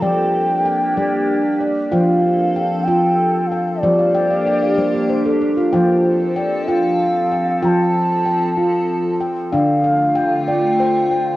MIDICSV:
0, 0, Header, 1, 4, 480
1, 0, Start_track
1, 0, Key_signature, -1, "major"
1, 0, Tempo, 632911
1, 24, Time_signature, 6, 3, 24, 8
1, 8620, End_track
2, 0, Start_track
2, 0, Title_t, "Bansuri"
2, 0, Program_c, 0, 73
2, 23, Note_on_c, 0, 79, 95
2, 1227, Note_off_c, 0, 79, 0
2, 1463, Note_on_c, 0, 77, 89
2, 2155, Note_on_c, 0, 79, 86
2, 2167, Note_off_c, 0, 77, 0
2, 2631, Note_on_c, 0, 77, 69
2, 2642, Note_off_c, 0, 79, 0
2, 2882, Note_on_c, 0, 74, 86
2, 2893, Note_off_c, 0, 77, 0
2, 4098, Note_off_c, 0, 74, 0
2, 4342, Note_on_c, 0, 72, 73
2, 4829, Note_on_c, 0, 74, 70
2, 4840, Note_off_c, 0, 72, 0
2, 5076, Note_on_c, 0, 77, 90
2, 5087, Note_off_c, 0, 74, 0
2, 5792, Note_off_c, 0, 77, 0
2, 5796, Note_on_c, 0, 82, 89
2, 5822, Note_on_c, 0, 81, 96
2, 5829, Note_off_c, 0, 82, 0
2, 6963, Note_off_c, 0, 81, 0
2, 7222, Note_on_c, 0, 77, 95
2, 7914, Note_off_c, 0, 77, 0
2, 7946, Note_on_c, 0, 79, 96
2, 8620, Note_off_c, 0, 79, 0
2, 8620, End_track
3, 0, Start_track
3, 0, Title_t, "Handpan"
3, 0, Program_c, 1, 114
3, 0, Note_on_c, 1, 79, 51
3, 16, Note_on_c, 1, 55, 69
3, 17, Note_on_c, 1, 74, 64
3, 22, Note_on_c, 1, 53, 65
3, 263, Note_off_c, 1, 79, 0
3, 497, Note_on_c, 1, 79, 56
3, 502, Note_off_c, 1, 55, 0
3, 729, Note_off_c, 1, 74, 0
3, 737, Note_on_c, 1, 55, 65
3, 738, Note_on_c, 1, 74, 53
3, 1210, Note_off_c, 1, 74, 0
3, 1219, Note_on_c, 1, 74, 51
3, 1223, Note_off_c, 1, 55, 0
3, 1223, Note_off_c, 1, 79, 0
3, 1439, Note_off_c, 1, 53, 0
3, 1455, Note_on_c, 1, 65, 68
3, 1457, Note_on_c, 1, 79, 62
3, 1464, Note_on_c, 1, 53, 73
3, 1705, Note_off_c, 1, 74, 0
3, 1934, Note_off_c, 1, 79, 0
3, 1943, Note_off_c, 1, 65, 0
3, 1943, Note_on_c, 1, 79, 55
3, 2172, Note_off_c, 1, 79, 0
3, 2181, Note_on_c, 1, 79, 57
3, 2183, Note_on_c, 1, 65, 68
3, 2659, Note_off_c, 1, 79, 0
3, 2667, Note_off_c, 1, 65, 0
3, 2668, Note_on_c, 1, 79, 52
3, 2880, Note_off_c, 1, 53, 0
3, 2906, Note_on_c, 1, 55, 64
3, 2907, Note_on_c, 1, 53, 73
3, 2907, Note_on_c, 1, 74, 61
3, 3026, Note_on_c, 1, 77, 54
3, 3132, Note_off_c, 1, 74, 0
3, 3135, Note_off_c, 1, 79, 0
3, 3144, Note_on_c, 1, 79, 62
3, 3252, Note_off_c, 1, 77, 0
3, 3265, Note_on_c, 1, 77, 47
3, 3371, Note_off_c, 1, 79, 0
3, 3387, Note_on_c, 1, 79, 61
3, 3389, Note_off_c, 1, 55, 0
3, 3492, Note_off_c, 1, 77, 0
3, 3509, Note_on_c, 1, 77, 55
3, 3613, Note_off_c, 1, 79, 0
3, 3626, Note_on_c, 1, 55, 74
3, 3626, Note_on_c, 1, 72, 54
3, 3734, Note_off_c, 1, 77, 0
3, 3747, Note_on_c, 1, 74, 54
3, 3852, Note_off_c, 1, 72, 0
3, 3865, Note_on_c, 1, 72, 63
3, 3973, Note_off_c, 1, 74, 0
3, 3985, Note_on_c, 1, 69, 61
3, 4092, Note_off_c, 1, 72, 0
3, 4106, Note_on_c, 1, 67, 53
3, 4109, Note_off_c, 1, 55, 0
3, 4212, Note_off_c, 1, 69, 0
3, 4224, Note_on_c, 1, 65, 63
3, 4321, Note_off_c, 1, 53, 0
3, 4333, Note_off_c, 1, 65, 0
3, 4333, Note_off_c, 1, 67, 0
3, 4343, Note_on_c, 1, 65, 73
3, 4343, Note_on_c, 1, 79, 63
3, 4353, Note_on_c, 1, 53, 74
3, 4815, Note_off_c, 1, 79, 0
3, 4824, Note_on_c, 1, 79, 60
3, 4828, Note_off_c, 1, 65, 0
3, 5058, Note_off_c, 1, 79, 0
3, 5066, Note_on_c, 1, 65, 69
3, 5067, Note_on_c, 1, 79, 57
3, 5540, Note_off_c, 1, 79, 0
3, 5549, Note_off_c, 1, 65, 0
3, 5549, Note_on_c, 1, 79, 51
3, 5764, Note_off_c, 1, 53, 0
3, 5774, Note_off_c, 1, 79, 0
3, 5782, Note_on_c, 1, 65, 67
3, 5783, Note_on_c, 1, 79, 65
3, 5793, Note_on_c, 1, 53, 67
3, 6252, Note_off_c, 1, 79, 0
3, 6261, Note_on_c, 1, 79, 55
3, 6266, Note_off_c, 1, 65, 0
3, 6502, Note_on_c, 1, 65, 65
3, 6972, Note_off_c, 1, 79, 0
3, 6982, Note_on_c, 1, 79, 52
3, 6986, Note_off_c, 1, 65, 0
3, 7202, Note_off_c, 1, 53, 0
3, 7214, Note_off_c, 1, 79, 0
3, 7224, Note_on_c, 1, 62, 75
3, 7224, Note_on_c, 1, 79, 62
3, 7233, Note_on_c, 1, 50, 71
3, 7462, Note_on_c, 1, 77, 59
3, 7692, Note_off_c, 1, 79, 0
3, 7701, Note_on_c, 1, 79, 68
3, 7706, Note_off_c, 1, 62, 0
3, 7947, Note_on_c, 1, 74, 63
3, 8184, Note_off_c, 1, 79, 0
3, 8185, Note_off_c, 1, 77, 0
3, 8190, Note_on_c, 1, 72, 70
3, 8192, Note_on_c, 1, 79, 53
3, 8421, Note_off_c, 1, 79, 0
3, 8430, Note_on_c, 1, 79, 57
3, 8620, Note_off_c, 1, 50, 0
3, 8620, Note_off_c, 1, 72, 0
3, 8620, Note_off_c, 1, 74, 0
3, 8620, Note_off_c, 1, 79, 0
3, 8620, End_track
4, 0, Start_track
4, 0, Title_t, "Ambient pad"
4, 0, Program_c, 2, 92
4, 19, Note_on_c, 2, 58, 70
4, 21, Note_on_c, 2, 67, 76
4, 22, Note_on_c, 2, 62, 61
4, 1452, Note_off_c, 2, 58, 0
4, 1452, Note_off_c, 2, 67, 0
4, 1453, Note_off_c, 2, 62, 0
4, 1474, Note_on_c, 2, 60, 69
4, 1475, Note_on_c, 2, 69, 75
4, 1477, Note_on_c, 2, 53, 67
4, 2900, Note_off_c, 2, 60, 0
4, 2900, Note_off_c, 2, 69, 0
4, 2901, Note_off_c, 2, 53, 0
4, 2909, Note_on_c, 2, 58, 76
4, 2911, Note_on_c, 2, 62, 62
4, 2915, Note_on_c, 2, 67, 86
4, 4337, Note_off_c, 2, 58, 0
4, 4338, Note_off_c, 2, 62, 0
4, 4340, Note_off_c, 2, 67, 0
4, 4347, Note_on_c, 2, 53, 76
4, 4347, Note_on_c, 2, 60, 61
4, 4351, Note_on_c, 2, 69, 79
4, 5775, Note_off_c, 2, 53, 0
4, 5789, Note_on_c, 2, 53, 72
4, 7199, Note_off_c, 2, 60, 0
4, 7201, Note_off_c, 2, 69, 0
4, 7215, Note_off_c, 2, 53, 0
4, 7226, Note_on_c, 2, 50, 69
4, 7227, Note_on_c, 2, 65, 81
4, 7231, Note_on_c, 2, 57, 67
4, 8620, Note_off_c, 2, 50, 0
4, 8620, Note_off_c, 2, 57, 0
4, 8620, Note_off_c, 2, 65, 0
4, 8620, End_track
0, 0, End_of_file